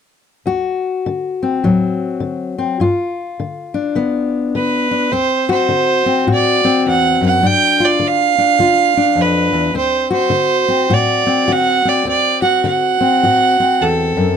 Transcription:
0.46 1.00 D2 medium
0.46 2.76 F#4 medium
1.06 1.59 D3 medium
1.43 2.57 C4 soft
1.64 2.17 A2 medium
1.64 2.80 F#3 medium
2.20 2.74 D3 medium
2.58 2.77 C4 medium
2.80 3.33 G2 medium
2.80 5.10 F4 medium
3.40 3.92 D3 medium
3.74 4.90 D4 medium
3.95 4.49 D3 medium
3.95 5.09 B3 medium
4.55 5.08 D3 medium
4.55 5.14 B4 medium
4.91 5.10 D4 medium
5.12 5.65 D2 medium
5.12 6.05 C4 medium
5.12 5.48 C5 loud
5.49 6.26 F#4 medium
5.49 6.25 C5 loud
5.69 6.23 D3 medium
6.06 6.63 C4 medium
6.27 6.81 A2 medium
6.27 7.41 F#4 medium
6.34 6.85 D5 medium
6.65 7.41 C4 medium
6.86 7.21 E2 medium
6.86 7.20 F#5 medium
7.21 7.42 F#2 medium
7.26 7.48 F#5 loud
7.43 7.96 G2 medium
7.43 8.38 D4 medium
7.47 7.86 G5 loud
7.80 8.59 F4 medium
7.84 8.09 D5 medium
7.99 8.54 D3 medium
8.07 9.22 F5 loud
8.38 8.97 D4 medium
8.59 9.13 D3 medium
8.59 9.73 F4 medium
8.97 9.74 D4 medium
9.15 9.52 F2 medium
9.21 9.76 B4 medium
9.53 9.74 E2 medium
9.74 10.28 D2 medium
9.74 10.68 C4 medium
9.74 10.09 C5 medium
10.10 10.90 F#4 medium
10.10 10.95 C5 loud
10.30 10.85 D3 medium
10.68 11.25 C4 medium
10.90 11.44 A2 medium
10.90 11.46 F#4 medium
10.90 11.54 D5 medium
11.26 11.84 C4 medium
11.48 12.02 D3 medium
11.48 12.04 F#4 medium
11.52 11.90 F#5 loud
11.85 12.05 C4 medium
11.85 12.08 D5 medium
12.05 12.60 D2 medium
12.05 12.99 C4 medium
12.05 12.42 D5 medium
12.42 13.23 F#4 medium
12.42 12.63 F#5 medium
12.64 13.18 D3 medium
12.64 13.83 F#5 loud
13.01 13.59 C4 medium
13.23 13.77 A2 medium
13.23 14.37 F#4 medium
13.60 14.37 C4 medium
13.81 14.17 E2 medium
13.81 14.37 A4 medium
14.17 14.37 F#2 medium

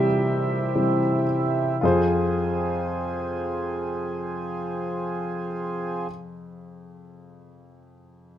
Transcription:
0.00 0.75 C3 soft
0.00 1.79 C3 medium
0.00 0.75 E3 soft
0.00 0.76 G3 medium
0.00 1.79 G3 medium
0.00 1.84 C#4 soft
0.00 1.79 E4 medium
0.00 1.84 E4 medium
0.00 1.85 G4 medium
0.00 1.85 A#4 medium
0.00 1.85 C5 medium
0.00 1.84 E5 medium
0.00 1.85 G5 medium
0.75 0.99 C3 soft
0.75 0.99 E3 soft
0.75 1.00 G3 soft
1.81 6.07 F2 medium
1.81 6.07 F3 medium
1.81 6.08 C4 medium
1.81 6.05 F4 medium
1.81 6.07 G#4 medium
1.85 6.09 C5 medium

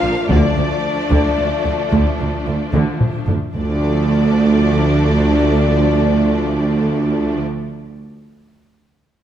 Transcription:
0.00 0.11 A#1 soft
0.00 0.13 A#1 soft
0.00 0.10 A#2 soft
0.00 0.11 D3 soft
0.00 0.25 F3 medium
0.00 0.25 A#3 medium
0.00 0.25 D4 medium
0.00 0.29 F4 medium
0.00 0.29 F5 medium
0.29 0.37 D2 medium
0.29 0.37 D2 soft
0.29 0.40 D2 medium
0.29 1.07 D3 medium
0.29 0.54 D3 soft
0.29 3.30 F3 soft
0.29 3.35 A3 soft
0.29 3.30 D4 soft
0.29 2.69 D4 medium
0.29 2.69 D5 medium
0.29 taiko medium
0.56 0.64 D2 soft
0.56 0.68 D2 soft
0.56 0.65 D2 soft
0.56 0.64 D3 soft
1.10 1.19 D2 medium
1.10 1.22 D2 medium
1.10 1.36 D3 medium
1.10 taiko medium
1.37 1.46 D2 soft
1.37 1.49 D2 soft
1.37 1.45 D3 soft
1.64 1.73 D2 soft
1.64 1.77 D2 soft
1.64 1.72 D3 soft
1.91 2.00 D2 medium
1.91 2.04 D2 medium
1.91 2.17 D3 soft
1.91 taiko medium
2.19 2.27 D2 soft
2.19 2.28 D2 soft
2.19 2.30 D2 soft
2.19 2.27 D3 soft
2.46 2.54 D2 soft
2.46 2.55 D2 soft
2.46 2.58 D2 soft
2.46 2.55 D3 soft
2.73 2.81 D2 soft
2.73 2.82 D2 medium
2.73 2.85 D2 soft
2.73 2.99 D3 medium
2.73 taiko mid medium
3.01 taiko low-mid medium
3.27 3.35 D2 soft
3.27 3.39 D2 soft
3.27 3.36 D3 soft
3.27 taiko low medium
3.53 7.38 D2 soft
3.53 7.39 D2 medium
3.53 7.39 D3 soft
3.53 7.40 F3 soft
3.53 7.39 A3 soft
3.53 7.37 D4 medium
3.53 7.39 D4 medium
3.53 7.40 D5 medium

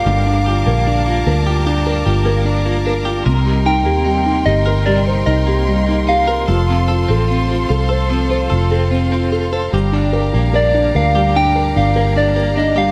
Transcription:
0.00 0.66 A#3 medium
0.00 0.24 D4 medium
0.00 0.26 D4 medium
0.00 0.47 F4 medium
0.00 0.67 A#4 medium
0.00 6.45 A#4 medium
0.00 2.26 F5 loud
0.00 3.22 F5 medium
0.00 3.22 D6 medium
0.06 0.62 G1 medium
0.06 1.65 G2 medium
0.06 3.22 D3 medium
0.06 0.46 G4 medium
0.06 3.23 A5 medium
0.26 0.85 D4 medium
0.26 0.86 D4 soft
0.46 1.05 F4 medium
0.46 1.46 G4 medium
0.66 1.22 A#1 medium
0.66 1.06 A#3 medium
0.66 1.25 A#4 soft
0.87 1.25 D4 medium
0.87 1.65 D4 medium
1.06 2.25 A#3 medium
1.06 1.44 F4 medium
1.27 2.02 D2 medium
1.27 1.85 D4 medium
1.27 1.85 A#4 medium
1.46 2.04 F4 medium
1.46 1.66 G4 medium
1.66 3.34 G2 medium
1.66 2.43 D4 medium
1.66 2.05 G4 medium
1.86 2.45 D4 medium
1.86 2.24 A#4 medium
2.06 3.22 G1 medium
2.06 2.64 F4 medium
2.06 3.05 G4 medium
2.25 2.65 A#3 medium
2.25 2.85 A#4 medium
2.45 3.23 D4 medium
2.45 2.84 D4 medium
2.65 3.85 A#3 medium
2.65 3.05 F4 soft
2.85 3.34 D4 medium
2.85 3.25 A#4 medium
3.05 3.26 F4 soft
3.05 3.26 G4 medium
3.25 3.86 C2 medium
3.25 4.85 C3 medium
3.25 6.45 C3 medium
3.25 6.46 D#4 medium
3.25 3.64 A#4 medium
3.25 6.45 G5 medium
3.25 9.69 C6 medium
3.45 4.05 G3 soft
3.45 4.04 D#4 medium
3.66 4.24 D#4 medium
3.66 4.64 A#4 medium
3.66 4.47 G5 loud
3.85 4.43 D#2 medium
3.85 4.24 A#3 soft
3.85 4.45 G4 medium
4.05 4.85 G3 soft
4.05 4.44 D#4 medium
4.26 5.46 A#3 soft
4.26 5.26 D#4 medium
4.45 5.23 G1 medium
4.45 5.05 D#4 medium
4.45 5.46 G4 medium
4.45 4.85 D#5 loud
4.66 4.85 A#4 medium
4.66 6.25 A#4 medium
4.86 6.57 C3 medium
4.86 5.67 G3 medium
4.86 5.25 A#4 medium
4.86 5.00 D5 medium
5.06 5.66 D#4 soft
5.06 6.45 C5 medium
5.26 6.45 C2 medium
5.26 5.87 D#4 medium
5.26 6.26 A#4 medium
5.26 6.04 D#5 medium
5.47 5.86 A#3 medium
5.47 6.08 G4 medium
5.67 6.47 G3 medium
5.67 6.06 D#4 medium
5.87 6.56 A#3 medium
5.87 6.47 D#4 medium
6.07 6.56 D#4 medium
6.07 6.48 G4 medium
6.07 6.85 F5 medium
6.27 6.48 A#4 medium
6.27 6.48 A#4 soft
6.48 7.05 F1 loud
6.48 8.09 F3 medium
6.48 9.69 F3 medium
6.48 6.87 A4 medium
6.48 9.71 A4 medium
6.48 9.71 C5 medium
6.48 12.91 F5 medium
6.68 7.28 C4 soft
6.68 7.28 F4 medium
6.88 7.49 F4 medium
6.88 7.88 A4 medium
7.08 7.66 A1 medium
7.08 7.47 C4 soft
7.08 7.68 A4 soft
7.28 8.09 C4 soft
7.28 7.69 F4 medium
7.49 8.70 C4 soft
7.49 8.50 F4 soft
7.69 8.48 C2 medium
7.69 8.30 F4 medium
7.69 8.70 A4 medium
7.89 8.09 A4 medium
7.89 8.29 C5 medium
8.09 10.16 F3 medium
8.09 8.89 C4 medium
8.09 8.49 A4 soft
8.30 8.91 F4 medium
8.30 9.50 C5 soft
8.50 9.69 F1 medium
8.50 9.09 F4 medium
8.50 9.52 A4 medium
8.71 9.11 C4 medium
8.71 9.30 A4 medium
8.91 9.70 C4 medium
8.91 9.32 F4 soft
9.11 9.81 C4 medium
9.11 9.71 F4 soft
9.32 9.93 F4 medium
9.32 9.72 A4 medium
9.52 9.73 A4 medium
9.52 9.72 C5 soft
9.72 10.30 G1 medium
9.72 11.34 G2 medium
9.72 11.14 G3 medium
9.72 12.91 G4 medium
9.72 10.13 G4 medium
9.72 12.91 D5 medium
9.72 12.91 A#5 medium
9.93 10.32 D4 soft
9.93 10.53 D4 medium
10.13 11.15 G4 medium
10.13 10.52 A#4 medium
10.33 10.91 A#1 medium
10.33 10.75 A#3 soft
10.33 10.73 D4 medium
10.53 10.94 D4 medium
10.53 10.93 A#4 soft
10.53 10.98 D5 medium
10.74 11.96 A#3 soft
10.74 11.34 D4 medium
10.95 11.72 D2 medium
10.95 11.54 D4 medium
10.95 11.54 A#4 soft
10.95 11.38 F5 loud
11.15 12.73 G3 medium
11.15 11.36 G4 medium
11.36 12.91 G2 medium
11.36 11.74 D4 medium
11.36 11.76 G4 medium
11.36 11.77 G5 loud
11.55 12.15 D4 medium
11.55 11.94 A#4 soft
11.76 12.91 G1 loud
11.76 12.14 D4 medium
11.76 12.75 G4 medium
11.76 12.14 F5 medium
11.96 12.36 A#3 medium
11.96 12.35 A#4 medium
12.16 12.56 D4 medium
12.16 12.54 D4 medium
12.16 12.54 D5 medium
12.36 12.91 A#3 medium
12.36 12.91 A#4 soft
12.56 12.91 D4 medium
12.56 12.79 D#5 medium
12.76 12.91 G3 medium
12.76 12.91 G4 medium
12.76 12.91 F5 loud

